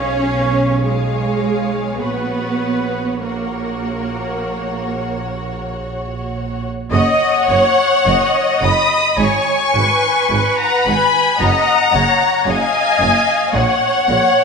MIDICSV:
0, 0, Header, 1, 6, 480
1, 0, Start_track
1, 0, Key_signature, 6, "major"
1, 0, Tempo, 1153846
1, 835, Time_signature, 4, 2, 24, 8
1, 835, Tempo, 1209677
1, 1795, Tempo, 1247401
1, 2755, Tempo, 1149425
1, 3235, Tempo, 1111111
1, 4675, Tempo, 1071429
1, 6036, End_track
2, 0, Start_track
2, 0, Title_t, "Violin section"
2, 0, Program_c, 0, 48
2, 0, Note_on_c, 0, 77, 62
2, 346, Note_off_c, 0, 77, 0
2, 351, Note_on_c, 0, 77, 58
2, 828, Note_off_c, 0, 77, 0
2, 841, Note_on_c, 0, 78, 45
2, 1309, Note_off_c, 0, 78, 0
2, 1314, Note_on_c, 0, 78, 49
2, 2655, Note_off_c, 0, 78, 0
2, 2757, Note_on_c, 0, 78, 113
2, 3461, Note_off_c, 0, 78, 0
2, 3474, Note_on_c, 0, 87, 109
2, 3715, Note_on_c, 0, 85, 113
2, 3718, Note_off_c, 0, 87, 0
2, 4321, Note_off_c, 0, 85, 0
2, 4322, Note_on_c, 0, 82, 104
2, 4434, Note_on_c, 0, 83, 114
2, 4439, Note_off_c, 0, 82, 0
2, 4670, Note_on_c, 0, 82, 116
2, 4672, Note_off_c, 0, 83, 0
2, 5148, Note_off_c, 0, 82, 0
2, 5149, Note_on_c, 0, 80, 124
2, 5630, Note_off_c, 0, 80, 0
2, 5636, Note_on_c, 0, 78, 112
2, 6036, Note_off_c, 0, 78, 0
2, 6036, End_track
3, 0, Start_track
3, 0, Title_t, "Viola section"
3, 0, Program_c, 1, 48
3, 0, Note_on_c, 1, 73, 75
3, 340, Note_on_c, 1, 68, 68
3, 343, Note_off_c, 1, 73, 0
3, 831, Note_on_c, 1, 71, 66
3, 832, Note_off_c, 1, 68, 0
3, 1309, Note_on_c, 1, 70, 48
3, 1312, Note_off_c, 1, 71, 0
3, 2268, Note_off_c, 1, 70, 0
3, 2755, Note_on_c, 1, 75, 115
3, 2982, Note_off_c, 1, 75, 0
3, 3000, Note_on_c, 1, 73, 89
3, 3235, Note_off_c, 1, 73, 0
3, 3236, Note_on_c, 1, 75, 103
3, 3714, Note_on_c, 1, 73, 94
3, 3720, Note_off_c, 1, 75, 0
3, 3957, Note_on_c, 1, 71, 105
3, 3959, Note_off_c, 1, 73, 0
3, 4668, Note_on_c, 1, 75, 106
3, 4673, Note_off_c, 1, 71, 0
3, 4905, Note_off_c, 1, 75, 0
3, 4914, Note_on_c, 1, 73, 84
3, 5150, Note_on_c, 1, 75, 101
3, 5151, Note_off_c, 1, 73, 0
3, 5631, Note_off_c, 1, 75, 0
3, 5634, Note_on_c, 1, 73, 88
3, 5874, Note_off_c, 1, 73, 0
3, 5879, Note_on_c, 1, 73, 101
3, 6036, Note_off_c, 1, 73, 0
3, 6036, End_track
4, 0, Start_track
4, 0, Title_t, "Violin section"
4, 0, Program_c, 2, 48
4, 0, Note_on_c, 2, 68, 58
4, 0, Note_on_c, 2, 73, 58
4, 334, Note_off_c, 2, 73, 0
4, 336, Note_off_c, 2, 68, 0
4, 339, Note_on_c, 2, 73, 57
4, 341, Note_on_c, 2, 68, 53
4, 822, Note_off_c, 2, 73, 0
4, 823, Note_off_c, 2, 68, 0
4, 832, Note_on_c, 2, 73, 49
4, 834, Note_on_c, 2, 66, 49
4, 1303, Note_off_c, 2, 73, 0
4, 1311, Note_off_c, 2, 66, 0
4, 1315, Note_on_c, 2, 66, 45
4, 1318, Note_on_c, 2, 73, 50
4, 2656, Note_off_c, 2, 66, 0
4, 2658, Note_off_c, 2, 73, 0
4, 2755, Note_on_c, 2, 73, 117
4, 3460, Note_off_c, 2, 73, 0
4, 3480, Note_on_c, 2, 83, 104
4, 3721, Note_off_c, 2, 83, 0
4, 3725, Note_on_c, 2, 80, 96
4, 4326, Note_off_c, 2, 80, 0
4, 4329, Note_on_c, 2, 78, 93
4, 4442, Note_off_c, 2, 78, 0
4, 4450, Note_on_c, 2, 80, 106
4, 4678, Note_on_c, 2, 78, 110
4, 4680, Note_off_c, 2, 80, 0
4, 5152, Note_off_c, 2, 78, 0
4, 5156, Note_on_c, 2, 77, 100
4, 5632, Note_on_c, 2, 73, 93
4, 5634, Note_off_c, 2, 77, 0
4, 6036, Note_off_c, 2, 73, 0
4, 6036, End_track
5, 0, Start_track
5, 0, Title_t, "Cello section"
5, 0, Program_c, 3, 48
5, 0, Note_on_c, 3, 61, 87
5, 343, Note_off_c, 3, 61, 0
5, 344, Note_on_c, 3, 56, 73
5, 831, Note_on_c, 3, 59, 71
5, 834, Note_off_c, 3, 56, 0
5, 1310, Note_on_c, 3, 58, 57
5, 1312, Note_off_c, 3, 59, 0
5, 2269, Note_off_c, 3, 58, 0
5, 2752, Note_on_c, 3, 42, 94
5, 2785, Note_off_c, 3, 42, 0
5, 2995, Note_on_c, 3, 42, 90
5, 3029, Note_off_c, 3, 42, 0
5, 3230, Note_on_c, 3, 42, 89
5, 3264, Note_off_c, 3, 42, 0
5, 3471, Note_on_c, 3, 42, 84
5, 3505, Note_off_c, 3, 42, 0
5, 3714, Note_on_c, 3, 44, 87
5, 3749, Note_off_c, 3, 44, 0
5, 3957, Note_on_c, 3, 44, 83
5, 3992, Note_off_c, 3, 44, 0
5, 4198, Note_on_c, 3, 44, 86
5, 4233, Note_off_c, 3, 44, 0
5, 4437, Note_on_c, 3, 44, 89
5, 4472, Note_off_c, 3, 44, 0
5, 4673, Note_on_c, 3, 42, 93
5, 4709, Note_off_c, 3, 42, 0
5, 4907, Note_on_c, 3, 42, 86
5, 4943, Note_off_c, 3, 42, 0
5, 5143, Note_on_c, 3, 42, 90
5, 5179, Note_off_c, 3, 42, 0
5, 5384, Note_on_c, 3, 42, 90
5, 5420, Note_off_c, 3, 42, 0
5, 5626, Note_on_c, 3, 46, 92
5, 5662, Note_off_c, 3, 46, 0
5, 5873, Note_on_c, 3, 46, 88
5, 5909, Note_off_c, 3, 46, 0
5, 6036, End_track
6, 0, Start_track
6, 0, Title_t, "Double bass section"
6, 0, Program_c, 4, 48
6, 0, Note_on_c, 4, 35, 64
6, 834, Note_off_c, 4, 35, 0
6, 834, Note_on_c, 4, 34, 52
6, 2655, Note_off_c, 4, 34, 0
6, 2753, Note_on_c, 4, 30, 95
6, 2786, Note_off_c, 4, 30, 0
6, 2999, Note_on_c, 4, 30, 79
6, 3032, Note_off_c, 4, 30, 0
6, 3234, Note_on_c, 4, 30, 88
6, 3268, Note_off_c, 4, 30, 0
6, 3477, Note_on_c, 4, 30, 86
6, 3512, Note_off_c, 4, 30, 0
6, 3717, Note_on_c, 4, 32, 87
6, 3751, Note_off_c, 4, 32, 0
6, 3960, Note_on_c, 4, 32, 84
6, 3994, Note_off_c, 4, 32, 0
6, 4203, Note_on_c, 4, 32, 90
6, 4238, Note_off_c, 4, 32, 0
6, 4445, Note_on_c, 4, 32, 80
6, 4480, Note_off_c, 4, 32, 0
6, 4680, Note_on_c, 4, 30, 93
6, 4715, Note_off_c, 4, 30, 0
6, 4921, Note_on_c, 4, 30, 84
6, 4957, Note_off_c, 4, 30, 0
6, 5157, Note_on_c, 4, 30, 82
6, 5193, Note_off_c, 4, 30, 0
6, 5396, Note_on_c, 4, 30, 86
6, 5432, Note_off_c, 4, 30, 0
6, 5638, Note_on_c, 4, 34, 92
6, 5674, Note_off_c, 4, 34, 0
6, 5879, Note_on_c, 4, 34, 90
6, 5915, Note_off_c, 4, 34, 0
6, 6036, End_track
0, 0, End_of_file